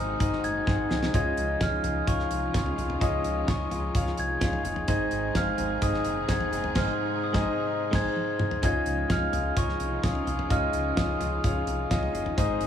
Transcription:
Already playing: G#1 G#2 C3 D#3 G#3 D#4 F#4 G#4 C5 D#5 F#5 D#6
0.00 G#3 C4
0.19 G#1 D#4 G#4 C5 D#5, kick, closed hi-hat
0.33 snare
0.43 F#1 G#6, closed hi-hat
0.66 G#1 G#3 C4 D#4 G#4 C5 F#5, kick, snare
0.90 C2 G#3 C4 D#4 G#4, snare
1.03 snare
1.13 C#2 C#3 F3 G#3 D#4 F4 G#4 C#5 D#5 G#6, kick, closed hi-hat
1.37 C#2, closed hi-hat
1.60 C#2 G#3 D#4 F4 G#4 C#5 F6, kick, snare, closed hi-hat
1.84 C#2 D#4 F4 G#4, closed hi-hat, floor tom
2.07 C#2 F4 G#4 C#5 F5 C#6, kick, closed hi-hat
2.19 snare
2.31 C2, closed hi-hat
2.53 C#2 G#3 D#4 F4 G#4 C#5 F5 C#6, kick, snare, closed hi-hat
2.66 floor tom
2.76 C2 D#4 F4 G#4, closed hi-hat, floor tom
2.90 floor tom
3.00 C#2 C#3 G#3 D#4 F4 G#4 C#5 D#5 D#6, kick, closed hi-hat
3.24 C#2, closed hi-hat
3.47 C#2 G#3 D#4 F4 G#4 C#5 D#5 C#6, kick, snare, closed hi-hat
3.70 C#2 D#4 F4 G#4, closed hi-hat, floor tom
3.95 C#2 F4 G#4 C#5 F5, kick, closed hi-hat
4.06 snare
4.18 C2 G#6, closed hi-hat
4.40 C#2 G#3 D#4 F4 G#4 C#5 F5, kick, snare, closed hi-hat
4.53 floor tom
4.63 F#1 D#4 F4 G#4, closed hi-hat, floor tom
4.76 floor tom
4.88 G#1 G#2 C3 D#3 G#3 C4 D#4 G#4 C5 D#5 G#6, kick, closed hi-hat
5.11 G#1, closed hi-hat
5.34 G#1 G#3 C4 D#4 G#4 C5 F5 F6, kick, snare, closed hi-hat
5.57 G#1 G#3 C4 D#4 G#4, closed hi-hat, floor tom
5.82 G#1 D#4 G#4 C5 D#5 D#6, kick, closed hi-hat
5.94 snare
6.05 F#1, closed hi-hat
6.28 G#1 G#3 C4 D#4 G#4 C5 F#5 G#6, kick, snare, closed hi-hat
6.41 floor tom
6.51 F#1 G#3 C4 D#4 G#4, closed hi-hat
6.64 floor tom
6.75 G#1 G#2 D#3 G#3 C4 D#4 G#4 C5 F6, kick, snare, crash
7.24 D#6
7.33 G#1 G#3 C4 D#4 G#4 C5 D#5, kick, snare
7.91 G#1 G#3 C4 D#4 G#4 C5 G#6, kick, snare, crash
8.16 high tom
8.39 mid tom
8.51 floor tom
8.62 C#2 C#3 F3 G#3 D#4 F4 G#4 C#5 D#5 G#6, kick, closed hi-hat
8.86 C#2, closed hi-hat
9.08 C#2 G#3 D#4 F4 G#4 C#5 F5 F6, kick, snare, closed hi-hat
9.32 C#2 D#4 F4 G#4, closed hi-hat, floor tom
9.56 C#2 F4 G#4 C#5 D#5 C#6, kick, closed hi-hat
9.69 snare
9.80 C2, closed hi-hat
10.02 C#2 G#3 D#4 F4 G#4 C#5 F5 D#6, kick, snare, closed hi-hat
10.15 floor tom
10.26 C2 D#4 F4 G#4, closed hi-hat, floor tom
10.39 floor tom
10.49 C#2 C#3 G#3 D#4 F4 G#4 C#5 D#5 F6, kick, closed hi-hat
10.73 C#2, closed hi-hat
10.96 C#2 G#3 D#4 F4 G#4 C#5 D#5 D#6, kick, snare, closed hi-hat
11.20 C#2 D#4 F4 G#4, closed hi-hat, floor tom
11.44 C#2 F4 G#4 C#5 F5, kick, closed hi-hat
11.67 C2, closed hi-hat
11.90 C#2 G#3 D#4 F4 G#4 C#5 D#5, kick, snare, closed hi-hat
12.03 floor tom
12.13 F#1 D#4 F4 G#4, closed hi-hat
12.26 floor tom
12.37 G#1 G#2 C3 D#3 G#3 C4 D#4 G#4 C5 D#5 D#6, kick, closed hi-hat
12.60 G#1, closed hi-hat

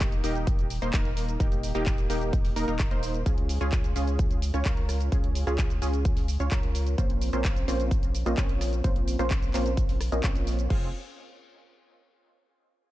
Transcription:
Already playing: D#1 A#3 D#4 G4
0.00 kick, clap, closed hi-hat, shaker
0.12 closed hi-hat, shaker
0.24 D#1 A#3 D#4 G4, open hi-hat, shaker
0.35 closed hi-hat, shaker
0.47 kick, closed hi-hat, shaker
0.59 closed hi-hat, shaker
0.70 open hi-hat, shaker
0.82 D#1 A#3 D#4 C5, closed hi-hat, shaker
0.93 D#1 A#3 D#4 A#4, kick, clap, closed hi-hat, shaker
1.05 closed hi-hat
1.17 open hi-hat, shaker
1.29 closed hi-hat, shaker
1.40 D#1 A#3 D#4 G4, kick, closed hi-hat, shaker
1.52 closed hi-hat, shaker
1.63 open hi-hat, shaker
1.75 D#1 A#3 D#4 G4, closed hi-hat, shaker
1.86 kick, clap, closed hi-hat, shaker
1.98 closed hi-hat, shaker
2.10 D#1 A#3 D#4 G4, open hi-hat, shaker
2.21 closed hi-hat, shaker
2.33 kick, closed hi-hat, shaker
2.45 open hi-hat, shaker
2.56 D#1 A#3 D#4 A#4, open hi-hat, shaker
2.68 D#1 A#3 D#4 A#4, closed hi-hat, shaker
2.79 kick, clap, closed hi-hat, shaker
2.91 D#1 A#3 D#4 C5, closed hi-hat
3.03 open hi-hat, shaker
3.14 closed hi-hat, shaker
3.26 C#2 C#4 F4 G#4, kick, closed hi-hat, shaker
3.38 closed hi-hat
3.49 open hi-hat, shaker
3.61 C#2 C#4 F4 G#4, closed hi-hat, shaker
3.72 kick, clap, closed hi-hat, shaker
3.84 closed hi-hat, shaker
3.96 C#2 C#4 F4 G#4, open hi-hat, shaker
4.07 closed hi-hat, shaker
4.19 kick, closed hi-hat, shaker
4.31 closed hi-hat, shaker
4.42 open hi-hat, shaker
4.54 C#2 C#4 F4 C#5, cross-stick, closed hi-hat, shaker
4.65 C#2 C#4 F4 A#4, kick, clap, closed hi-hat, shaker
4.77 closed hi-hat
4.89 cross-stick, open hi-hat, shaker
5.00 closed hi-hat, shaker
5.12 C#2 C#4 F4 G#4, kick, closed hi-hat, shaker
5.24 closed hi-hat
5.35 open hi-hat, shaker
5.47 C#2 C#4 F4 G#4, cross-stick, closed hi-hat, shaker
5.58 kick, clap, closed hi-hat, shaker
5.70 closed hi-hat, shaker
5.82 C#2 C#4 F4 G#4, open hi-hat, shaker
5.93 closed hi-hat, shaker
6.05 kick, closed hi-hat, shaker
6.17 open hi-hat, shaker
6.28 open hi-hat, shaker
6.40 C#2 C#4 F4 C#5, closed hi-hat, shaker
6.51 C#2 C#4 F4 A#4, kick, clap, closed hi-hat, shaker
6.63 closed hi-hat
6.75 open hi-hat, shaker
6.87 closed hi-hat, shaker
6.98 A#1 A#3 C4 C#4 F4 C5, kick, closed hi-hat, shaker
7.10 closed hi-hat
7.21 open hi-hat, shaker
7.33 A#1 A#3 C4 C#4 F4 C5, closed hi-hat, shaker
7.45 kick, clap, closed hi-hat, shaker
7.56 closed hi-hat, shaker
7.68 A#1 A#3 C4 C#4 F4 C5, open hi-hat, shaker
7.80 closed hi-hat, shaker
7.91 kick, closed hi-hat, shaker
8.03 closed hi-hat, shaker
8.15 open hi-hat, shaker
8.26 A#1 A#3 C4 C#4 F4 D#5, cross-stick, closed hi-hat, shaker
8.37 A#1 A#3 C4 C#4 F4 C#5, kick, clap, closed hi-hat, shaker
8.49 closed hi-hat
8.61 cross-stick, open hi-hat, shaker
8.73 closed hi-hat, shaker
8.84 A#1 A#3 C4 C#4 F4 C5, kick, closed hi-hat, shaker
8.96 closed hi-hat
9.08 open hi-hat, shaker
9.19 A#1 A#3 C4 C#4 F4 C5, cross-stick, closed hi-hat, shaker
9.31 kick, clap, closed hi-hat, shaker
9.42 closed hi-hat, shaker
9.54 A#1 A#3 C4 C#4 F4 C5, clap, open hi-hat, shaker
9.66 closed hi-hat, shaker
9.77 kick, closed hi-hat, shaker
9.89 open hi-hat, shaker
10.01 cross-stick, open hi-hat, shaker
10.12 A#1 A#3 C4 C#4 F4 D#5, closed hi-hat, shaker
10.24 A#1 A#3 C4 C#4 F4 C#5, kick, clap, closed hi-hat, shaker
10.35 closed hi-hat, shaker
10.47 open hi-hat, shaker
10.59 closed hi-hat, shaker
10.70 F1 C4 F4 G#4, kick, crash

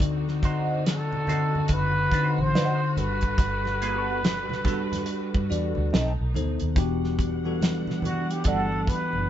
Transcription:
Already playing: D2 D3 C4 D#4 F#4 D5
0.00 kick, closed hi-hat, muted conga
0.28 snare
0.43 D#4 F#4 C5, kick, closed hi-hat
0.86 A4, snare, closed hi-hat
1.12 high conga
1.27 D3 C4 D#4 F#4 C5 D#5, closed hi-hat, high conga, low conga
1.55 low conga
1.68 F#1, muted clean electric guitar stroke, kick, closed hi-hat
1.73 B4
2.12 D3 C4 D#4 F#4 C5, kick, closed hi-hat
2.38 A1 C5, high conga
2.54 D#4 F#4 C5, snare, closed hi-hat, muted conga
2.95 G1 G3 D4 F#4 A4 B4, closed hi-hat, low conga
2.99 B4
3.21 kick, closed hi-hat
3.38 G1, kick, closed hi-hat, muted conga
3.65 snare, muted conga
3.82 A#3 F4 G#4, closed hi-hat
3.98 B3 F#4 A4
4.23 snare, closed hi-hat, high conga
4.49 snare, high conga
4.64 G3 B3 D4 F#4 A4 B4, kick, closed hi-hat, high conga, low conga
4.92 snare, closed hi-hat, low conga
5.06 closed hi-hat
5.35 G2, kick
5.49 E2 G3 D4 F#4 A4 D5, closed hi-hat
5.75 D2, high conga
5.91 B1 A3 B3 C4 D#4 A4, snare, muted conga
5.95 closed hi-hat
6.20 B1
6.34 D2 B2 B3 D#4 A4 C5, closed hi-hat, low conga
6.60 D#2, closed hi-hat
6.76 E1 E3 G3 B3 D4 F#4 G4 F#5, kick, closed hi-hat
7.04 snare
7.19 kick, closed hi-hat
7.44 E3 B3 D4 F#4 A4
7.61 snare, closed hi-hat, muted conga, high conga
7.87 snare, high conga
8.02 E3 B3 D4 F#4 A4, closed hi-hat, high conga, low conga
8.31 G4, closed hi-hat
8.44 G1 G3 D4 F#4 A4, kick, closed hi-hat, muted conga
8.72 muted conga
8.87 B4, kick, closed hi-hat
9.13 F#1, high conga

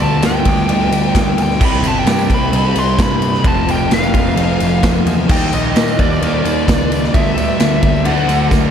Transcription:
Already playing: G2 D3 G3 B3 D4
0.00 D2 A5, tambourine
0.11 tambourine
0.22 D2 G5, snare, ride, tambourine
0.45 D2, kick, ride, tambourine
0.57 tambourine
0.68 D2 D3 G3 B3 D4, ride, tambourine
0.81 tambourine
0.92 D2, ride, tambourine
1.04 tambourine
1.15 D2, kick, snare, ride, tambourine
1.27 tambourine
1.37 D2, ride, tambourine
1.42 G5
1.50 snare, tambourine
1.58 C2 C3 G3 C4 E4, kick, crash
1.65 B5
1.83 G1, ride, tambourine
1.88 A5
1.97 G5, tambourine
2.06 G2, snare, ride, tambourine
2.12 G5
2.19 tambourine
2.30 C2, kick, ride
2.34 B5
2.41 tambourine
2.52 C2 C3 G3 C4 E4, ride
2.75 C2 C6, ride, tambourine
2.99 G2 B5, kick, snare, ride, tambourine
3.22 ride, tambourine
3.34 snare
3.43 F1 F2 C3 F3 A3 C4 F4, kick, ride
3.47 A5
3.68 F1 G5, ride, tambourine
3.81 tambourine
3.91 F1 F5, snare, ride, tambourine
4.03 tambourine
4.14 F1, kick, ride
4.27 tambourine
4.36 F1 F3 A3 C4 F4, ride
4.60 F1, ride, tambourine
4.83 F1, kick, snare, ride, tambourine
5.06 E2, ride, tambourine
5.28 D#2 D#3 G3 A#3 D#4 G5, kick, crash
5.53 A#1 D#5, ride, tambourine
5.64 tambourine
5.76 A#2, snare, ride, tambourine
5.88 tambourine
5.99 D#2 D5, kick, ride
6.11 tambourine
6.22 D#2 D#3 G3 A#3 D#4, ride
6.45 D#2, ride, tambourine
6.68 C#2, kick, snare, ride, tambourine
6.92 ride, tambourine
7.04 snare
7.13 D2 G2 D3 G3 B3 D4 E5, kick, ride, tambourine
7.27 tambourine
7.37 D2, ride, tambourine
7.59 D2, snare, ride, tambourine
7.82 D2, kick, ride
7.96 tambourine
8.04 D2 D3 F#3 A3 D4 F#5, ride
8.18 tambourine
8.28 D2, ride, tambourine
8.51 D2, kick, snare, tambourine
8.64 tambourine

